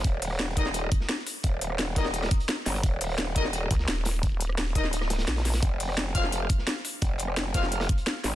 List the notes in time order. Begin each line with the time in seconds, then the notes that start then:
0.04 D#1, kick, closed hi-hat
0.22 closed hi-hat, open hi-hat
0.31 cross-stick
0.39 snare, closed hi-hat
0.56 D#4 A#4 D#5, kick, closed hi-hat
0.66 snare
0.74 closed hi-hat
0.91 kick, closed hi-hat
1.00 snare
1.09 snare, closed hi-hat
1.27 closed hi-hat, open hi-hat
1.43 D#1, kick, closed hi-hat
1.61 closed hi-hat
1.70 cross-stick
1.79 snare, closed hi-hat
1.96 D#4 A#4 D#5, kick, snare, closed hi-hat
2.05 snare
2.14 closed hi-hat
2.22 cross-stick, snare, closed hi-hat
2.31 kick, snare, closed hi-hat
2.40 closed hi-hat
2.49 snare, closed hi-hat
2.66 G1, snare, closed hi-hat, open hi-hat
2.75 closed hi-hat
2.83 D#1, kick, closed hi-hat
3.01 closed hi-hat, open hi-hat
3.18 snare, closed hi-hat
3.35 D#4 A#4 D#5, kick, snare, closed hi-hat
3.45 snare
3.53 closed hi-hat
3.71 C#2, kick, closed hi-hat
3.79 snare
3.88 D#1, snare, closed hi-hat
4.05 snare, closed hi-hat, open hi-hat
4.23 kick, snare, closed hi-hat
4.41 closed hi-hat
4.49 cross-stick
4.58 snare, closed hi-hat
4.75 D#4 A#4 D#5, kick, closed hi-hat
4.84 D1, snare
4.93 closed hi-hat
5.01 cross-stick, snare
5.10 C#1, snare, closed hi-hat
5.18 snare, closed hi-hat
5.27 A#1, snare, closed hi-hat
5.36 snare, closed hi-hat
5.45 snare, closed hi-hat, open hi-hat
5.53 snare, closed hi-hat
5.63 F1, kick, closed hi-hat
5.80 closed hi-hat, open hi-hat
5.89 cross-stick
5.97 snare, closed hi-hat
6.15 F4 C5 F5, kick, closed hi-hat
6.24 snare
6.32 closed hi-hat
6.49 kick, closed hi-hat
6.58 snare
6.67 snare, closed hi-hat
6.85 closed hi-hat, open hi-hat
7.02 F1, kick, closed hi-hat
7.18 closed hi-hat
7.28 cross-stick
7.37 snare, closed hi-hat
7.54 F4 C5 F5, kick, snare, closed hi-hat
7.63 snare
7.72 closed hi-hat
7.80 cross-stick, snare, closed hi-hat
7.89 kick, snare, closed hi-hat
7.98 closed hi-hat
8.06 snare, closed hi-hat
8.24 G#1, snare, closed hi-hat, open hi-hat